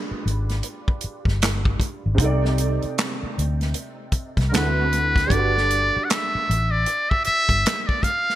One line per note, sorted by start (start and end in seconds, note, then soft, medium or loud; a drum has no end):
0.00 2.13 G3 medium
0.00 2.14 D4 medium
0.00 2.15 F4 medium
0.00 2.16 G#4 medium
0.00 2.17 B4 medium
0.11 muted fingered electric bass stroke soft
0.26 0.60 G#1 medium
0.26 closed hi-hat medium
0.49 snare soft
0.49 closed hi-hat soft
0.63 closed hi-hat medium
0.88 kick medium
1.01 muted fingered electric bass stroke soft
1.01 closed hi-hat medium
1.25 1.76 G1 medium
1.25 kick medium
1.25 snare soft
1.42 snare medium
1.42 clap medium
1.42 closed hi-hat medium
1.65 kick medium
1.80 muted fingered electric bass stroke soft
1.80 kick medium
1.80 closed hi-hat medium
2.06 2.18 G#1 medium
2.15 4.46 C3 medium
2.15 4.48 C4 medium
2.15 kick loud
2.19 2.78 C2 medium
2.19 4.49 D#4 medium
2.19 4.50 A4 medium
2.19 closed hi-hat medium
2.25 4.51 D5 medium
2.45 snare soft
2.58 closed hi-hat medium
2.82 muted fingered electric bass stroke soft
2.82 closed hi-hat soft
2.98 snare medium
2.98 clap medium
2.98 closed hi-hat medium
3.23 muted fingered electric bass stroke soft
3.38 3.73 D2 medium
3.38 closed hi-hat medium
3.61 snare soft
3.61 closed hi-hat soft
3.74 closed hi-hat medium
4.12 muted fingered electric bass stroke soft
4.12 kick medium
4.12 closed hi-hat medium
4.37 4.51 C2 medium
4.37 kick medium
4.37 snare soft
4.37 closed hi-hat soft
4.49 5.30 D3 medium
4.49 5.30 A3 medium
4.49 5.31 C4 medium
4.49 4.56 A#4 medium
4.54 5.31 E4 soft
4.54 5.30 F#4 medium
4.54 4.62 A4 soft
4.54 5.33 B4 medium
4.54 snare medium
4.54 clap medium
4.54 closed hi-hat medium
4.63 5.35 B4 medium
4.93 closed hi-hat soft
5.16 kick medium
5.16 snare soft
5.16 closed hi-hat soft
5.27 8.35 G3 medium
5.27 8.35 D4 soft
5.27 kick medium
5.31 5.90 G1 medium
5.31 8.35 F#4 medium
5.31 8.35 A4 soft
5.31 6.06 D5 medium
5.31 closed hi-hat medium
5.36 8.35 B4 medium
5.57 snare soft
5.70 closed hi-hat medium
5.96 muted fingered electric bass stroke soft
6.04 6.12 F#5 medium
6.10 6.73 E5 medium
6.10 snare loud
6.10 clap medium
6.10 closed hi-hat medium
6.35 muted fingered electric bass stroke soft
6.49 6.84 A1 medium
6.49 closed hi-hat medium
6.71 7.11 D5 medium
6.86 closed hi-hat medium
7.10 7.25 E5 medium
7.10 kick medium
7.24 7.83 E5 loud
7.24 muted fingered electric bass stroke soft
7.24 closed hi-hat soft
7.49 7.63 G1 medium
7.49 kick medium
7.49 closed hi-hat soft
7.66 snare medium
7.66 clap medium
7.66 closed hi-hat medium
7.83 7.89 E5 medium
7.87 8.05 D5 medium
7.87 kick medium
8.03 8.35 F5 medium
8.03 kick medium
8.03 closed hi-hat medium
8.30 snare soft